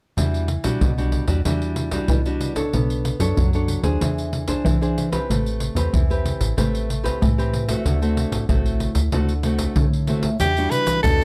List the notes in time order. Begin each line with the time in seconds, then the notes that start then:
0.17 E2 E3 G3 D4 F#4, pandeiro, surdo
0.34 pandeiro
0.48 pandeiro
0.64 B1 G3 D4 F#4, pandeiro, surdo
0.81 B1 B2, pandeiro, surdo
0.98 G3 D4 F#4, pandeiro
1.12 pandeiro, surdo
1.28 E2 G3 D4 F#4, pandeiro, surdo
1.45 E2 E3 G3 D4 F#4, pandeiro, surdo
1.62 pandeiro
1.76 pandeiro
1.91 G3 D4 F#4, pandeiro, surdo
2.08 B2 E3, pandeiro, surdo
2.26 G3 D4 F#4, pandeiro
2.41 pandeiro
2.55 D4 A4 C#5, pandeiro, surdo
2.73 B1 B3, pandeiro, surdo
2.90 pandeiro
3.05 pandeiro
3.20 F#2 D4 A4 C#5, pandeiro, surdo
3.37 F#2 F#3, pandeiro, surdo
3.53 D4 A4 C#5, pandeiro
3.68 pandeiro
3.83 D#2 D4 G#4 C5, pandeiro, surdo
4.01 E2 E3, pandeiro, surdo
4.18 pandeiro
4.33 pandeiro
4.48 D4 G#4 C5, pandeiro, surdo
4.65 E3, pandeiro, surdo
4.81 D4 G#4 C5, pandeiro
4.98 pandeiro
5.12 C4 G4 B4, pandeiro, surdo
5.29 A1 A3, pandeiro, surdo
5.46 pandeiro
5.60 pandeiro
5.75 E2 C4 G4 B4, pandeiro, surdo
5.93 E2 E3, pandeiro, surdo
6.10 C4 G4 B4, pandeiro
6.26 pandeiro
6.40 A1, pandeiro, surdo
6.57 A1 A3 C4 G4 B4, pandeiro, surdo
6.75 pandeiro
6.90 pandeiro
7.03 C4 G4 B4, pandeiro, surdo
7.21 A2 E3, pandeiro, surdo
7.38 C4 G4 B4, pandeiro
7.53 pandeiro
7.68 A3 C4 F#4, pandeiro, surdo
7.85 D2 D3, pandeiro, surdo
8.02 A3 C4 F#4, pandeiro
8.17 pandeiro
8.31 A1, pandeiro, surdo
8.49 A1 A2 A3 C4 F#4, pandeiro, surdo
8.66 pandeiro
8.80 pandeiro
8.95 D2, pandeiro, surdo
9.12 D2 D3 A3 C4 F#4, pandeiro, surdo
9.29 pandeiro
9.43 A3 C4 F#4, pandeiro
9.59 pandeiro, surdo
9.76 A2 D3, pandeiro, surdo
9.93 pandeiro
10.07 A3 C4 F#4, pandeiro
10.23 pandeiro, surdo
10.40 E2 E3 G3 D4 F#4 G4, pandeiro, shaker, surdo
10.57 G3 D4 F#4, pandeiro, shaker
10.71 B4, pandeiro, shaker
10.87 E3, pandeiro, shaker, surdo
11.03 E2 B2 G3 D4 F#4 A4, pandeiro, shaker, surdo